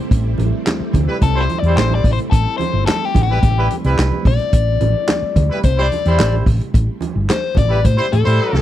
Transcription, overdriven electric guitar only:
1.23 1.41 A4 medium
1.41 1.58 C5 loud
1.58 1.76 D5 loud
1.77 1.94 C5 loud
1.95 2.12 D5 loud
2.13 2.18 C5 medium
2.31 2.57 A4 medium
2.58 2.86 C5 medium
2.86 3.05 A4 medium
3.05 3.22 G4 medium
3.23 3.75 G4 medium
4.27 5.60 D5 loud
5.65 5.82 C5 loud
5.82 6.33 D5 loud
7.30 7.58 C5 medium
7.58 7.85 D5 loud
7.86 8.13 C5 loud
8.12 8.62 A4 medium

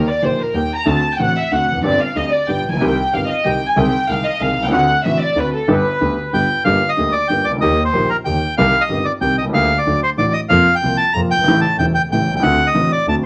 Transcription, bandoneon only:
6.34 6.64 G5 medium
6.65 6.90 F5 medium
6.89 7.14 D#5 medium
7.12 7.28 D5 medium
7.28 7.45 G5 medium
7.44 7.52 D5 medium
7.61 7.84 D#5 medium
7.85 8.10 C5 medium
8.10 8.17 A#4 medium
8.25 8.55 G5 medium
8.57 8.82 F5 medium
8.81 9.06 D#5 medium
9.05 9.12 D5 medium
9.21 9.36 G5 medium
9.38 9.45 D#5 medium
9.54 9.79 F5 medium
9.78 10.01 D5 medium
10.03 10.10 C5 medium
10.18 10.33 D5 medium
10.33 10.41 D#5 medium
10.49 10.75 F5 medium
10.75 10.97 G5 medium
10.97 11.13 A5 medium
11.13 11.21 A#5 medium
11.31 11.61 G5 medium
11.61 11.77 A5 medium
11.79 11.86 G5 medium
11.95 12.02 G5 medium
12.12 12.35 G5 medium
12.36 12.43 G5 medium
12.42 12.67 F#5 medium
12.67 12.92 D#5 medium
12.92 13.06 D5 medium
13.09 13.16 A5 medium

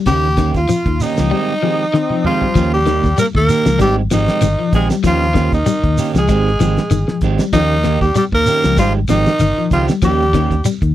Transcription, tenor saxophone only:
0.07 0.52 G4 loud
0.57 1.04 F4 medium
1.02 2.26 D#4 medium
2.26 2.70 F4 medium
2.74 3.15 G4 loud
3.19 3.26 A#4 loud
3.36 3.78 A#4 loud
3.82 3.95 G4 loud
4.13 4.71 D#4 loud
4.75 4.89 G#4 medium
5.07 5.51 F4 loud
5.54 6.12 D#4 medium
6.18 7.20 G#4 medium
7.53 7.98 D#4 loud
8.01 8.14 G4 loud
8.17 8.25 G4 loud
8.35 8.76 A#4 loud
8.79 8.93 F4 loud
9.10 9.68 D#4 loud
9.73 9.87 F4 medium
10.05 10.62 G4 loud

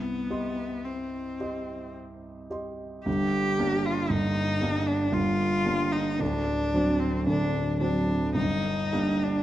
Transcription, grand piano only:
0.00 0.28 C2 soft
0.30 1.36 G4 soft
0.30 1.36 D#5 soft
0.30 1.37 C6 soft
1.40 2.47 G4 soft
1.40 2.47 D#5 soft
1.40 2.47 C6 soft
2.50 3.03 G4 soft
2.50 3.03 D#5 soft
2.50 3.03 C6 soft
3.06 3.58 G1 soft
3.06 3.58 G2 soft
3.58 4.07 G3 soft
3.58 4.07 A#3 soft
3.58 4.07 D4 soft
4.10 4.60 G1 soft
4.10 4.60 G2 soft
4.61 5.09 G3 soft
4.61 5.10 A#3 soft
4.61 5.10 D4 soft
5.12 5.64 G1 soft
5.12 5.64 G2 soft
5.65 6.15 G3 soft
5.65 6.16 A#3 soft
5.65 6.16 D4 soft
6.19 6.72 D1 soft
6.19 6.72 D2 soft
6.74 7.24 F#3 soft
6.74 7.24 C4 soft
6.74 7.25 D4 soft
7.27 7.79 D1 soft
7.27 7.79 D2 soft
7.81 8.31 F#3 soft
7.81 8.31 C4 soft
7.81 8.31 D4 soft
8.35 8.91 G1 soft
8.35 8.91 G2 soft
8.93 9.43 G3 soft
8.93 9.43 A#3 soft
8.93 9.43 D4 soft

